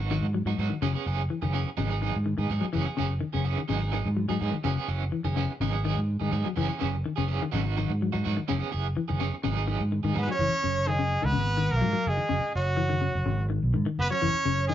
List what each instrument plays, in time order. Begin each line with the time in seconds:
Already playing: fingered electric bass G#1
0.00 clean electric guitar B3 D#4 F#4
0.10 clean electric guitar D#3 F#3 B3 D#4 F#4
0.21 fingered electric bass G#2
0.34 clean electric guitar F#3
0.45 fingered electric bass G#2, clean electric guitar F#3 B3 D#4 F#4
0.58 fingered electric bass G#2, clean electric guitar F#3 B3 D#4 F#4
0.70 clean electric guitar D#3, muted fingered electric bass stroke
0.82 fingered electric bass F#1, clean electric guitar C#3 E3 B3 C#4 G#4
0.94 clean electric guitar B3 C#4 G#4
1.06 fingered electric bass F#1, clean electric guitar E3 B3 C#4 G#4
1.30 clean electric guitar E3
1.42 fingered electric bass F#1, clean electric guitar D#3 B3 C#4 G#4
1.53 clean electric guitar C#3 E3 B3 C#4 G#4
1.77 fingered electric bass G#1, clean electric guitar C#3 F#3 B3 D#4 G#4
1.90 clean electric guitar B3 D#4 G#4
2.01 clean electric guitar D#3 F#3 B3 D#4 G#4
2.16 fingered electric bass G#2
2.26 clean electric guitar D#3
2.38 fingered electric bass G#2, clean electric guitar D#3 B3 D#4 G#4
2.50 fingered electric bass G#2, clean electric guitar F#3 B3 D#4 G#4
2.61 clean electric guitar F#3, muted fingered electric bass stroke
2.73 fingered electric bass F#1, clean electric guitar E3 B3 C#4 G#4
2.86 clean electric guitar B3 G#4
2.97 fingered electric bass F#1, clean electric guitar C#3 E3 B3 C#4 G#4
3.21 clean electric guitar D#3
3.33 fingered electric bass F#1, clean electric guitar C#3 B3 C#4 G#4
3.44 clean electric guitar E3 B3 C#4 G#4
3.57 clean electric guitar D#3
3.68 fingered electric bass G#1, clean electric guitar C#3 F#3 B3 D#4 G#4
3.81 clean electric guitar D#4
3.92 clean electric guitar D#3 F#3 B3 D#4 G#4
4.06 fingered electric bass G#2
4.17 clean electric guitar F#3
4.29 fingered electric bass G#2, clean electric guitar F#3 B3 D#4 G#4
4.40 fingered electric bass G#2, clean electric guitar F#3 B3 D#4 G#4
4.52 clean electric guitar D#3, muted fingered electric bass stroke
4.64 fingered electric bass F#1, clean electric guitar C#3 E3 B3 C#4 G#4
4.77 clean electric guitar B3 C#4 G#4
4.88 fingered electric bass F#1, clean electric guitar E3 B3 C#4, muted clean electric guitar stroke
5.12 clean electric guitar E3
5.24 fingered electric bass F#1, clean electric guitar D#3 B3 C#4 G#4
5.36 clean electric guitar C#3 E3 B3 C#4 G#4
5.60 fingered electric bass G#1, clean electric guitar C#3 F#3 B3 D#4 G#4
5.73 clean electric guitar B3 G#4
5.84 clean electric guitar D#3 F#3 B3 D#4 G#4
5.96 fingered electric bass G#2
6.20 fingered electric bass G#2, clean electric guitar D#3 B3 D#4 G#4
6.31 fingered electric bass G#2, clean electric guitar F#3 B3 D#4 G#4
6.45 clean electric guitar F#3, muted fingered electric bass stroke
6.56 fingered electric bass F#1, clean electric guitar E3 B3 C#4 G#4
6.68 clean electric guitar B3 C#4 G#4
6.79 fingered electric bass F#1, clean electric guitar C#3 E3 B3 C#4 G#4
7.06 clean electric guitar D#3
7.16 fingered electric bass F#1, clean electric guitar C#3 B3 C#4 G#4
7.28 clean electric guitar E3 B3 C#4 G#4
7.42 clean electric guitar D#3
7.52 fingered electric bass G#1, clean electric guitar C#3 F#3 B3 D#4 F#4
7.64 clean electric guitar B3 D#4 F#4
7.76 clean electric guitar D#3 F#3 B3 D#4 F#4
7.90 fingered electric bass G#2
8.02 clean electric guitar F#3
8.12 fingered electric bass G#2, clean electric guitar F#3 B3 D#4 F#4
8.24 fingered electric bass G#2, clean electric guitar F#3 B3 D#4 F#4
8.37 clean electric guitar D#3, muted fingered electric bass stroke
8.48 fingered electric bass F#1, clean electric guitar C#3 E3 B3 C#4 G#4
8.59 clean electric guitar B3 C#4 G#4
8.71 fingered electric bass F#1, clean electric guitar E3 B3 G#4, muted clean electric guitar stroke
8.97 clean electric guitar E3
9.08 fingered electric bass F#1, clean electric guitar D#3 B3 C#4 G#4
9.19 clean electric guitar C#3 E3 B3 C#4 G#4
9.44 fingered electric bass G#1, clean electric guitar C#3 F#3 B3 D#4 G#4
9.55 clean electric guitar B3 D#4 G#4
9.67 clean electric guitar D#3 F#3 B3 D#4 G#4
9.80 fingered electric bass G#2
9.92 clean electric guitar D#3
10.03 fingered electric bass G#2, clean electric guitar D#3 B3 D#4 G#4
10.14 fingered electric bass G#2, clean electric guitar F#3 B3 D#4 G#4
10.18 alto saxophone B3, trumpet B4
10.28 clean electric guitar F#3, trumpet C#5, muted fingered electric bass stroke
10.32 alto saxophone C#4
10.39 fingered electric bass F#1, clean electric guitar E3
10.52 muted fingered electric bass stroke
10.64 fingered electric bass F#1, clean electric guitar C#3
10.87 clean electric guitar D#3, trumpet G#4
10.91 alto saxophone G#3
10.99 clean electric guitar C#3
11.22 fingered electric bass C#2, clean electric guitar D#3, alto saxophone B3, trumpet B4
11.33 fingered electric bass G#1, clean electric guitar C#3
11.57 clean electric guitar D#3
11.71 fingered electric bass B1, trumpet A#4
11.76 alto saxophone A#3
11.81 fingered electric bass G#2, clean electric guitar F#3
11.93 clean electric guitar F#3
12.07 fingered electric bass F#1, alto saxophone G#3, trumpet G#4
12.17 clean electric guitar D#3
12.29 fingered electric bass F#1, clean electric guitar C#3
12.44 muted fingered electric bass stroke
12.55 fingered electric bass F#1, alto saxophone F#3, trumpet F#4
12.77 clean electric guitar E3
12.89 clean electric guitar D#3
13.01 clean electric guitar C#3
13.15 fingered electric bass F#1
13.26 fingered electric bass G#1, clean electric guitar C#3
13.50 clean electric guitar D#3
13.63 fingered electric bass B1
13.74 fingered electric bass G#2, clean electric guitar D#3
13.86 clean electric guitar D#3
13.99 fingered electric bass F#1, alto saxophone B3, trumpet B4
14.11 clean electric guitar F#3, alto saxophone C#4, trumpet C#5
14.22 fingered electric bass F#1, clean electric guitar E3
14.34 muted fingered electric bass stroke
14.45 fingered electric bass F#1, clean electric guitar C#3
14.68 clean electric guitar D#3, alto saxophone G#3, trumpet G#4